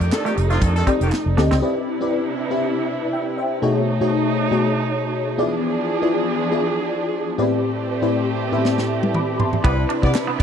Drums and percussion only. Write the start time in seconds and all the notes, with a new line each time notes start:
0.01 closed hi-hat
0.12 snare, clap
0.26 snare, closed hi-hat
0.37 closed hi-hat
0.50 snare, closed hi-hat
0.61 kick, closed hi-hat
0.76 closed hi-hat
0.87 kick, closed hi-hat
1.01 closed hi-hat
1.12 snare, clap
1.38 snare
1.51 snare
8.65 snare
8.78 snare
9.03 high tom
9.14 mid tom
9.40 floor tom
9.53 floor tom
9.65 kick, ride
9.90 ride
10.03 kick
10.15 snare, clap, ride
10.40 kick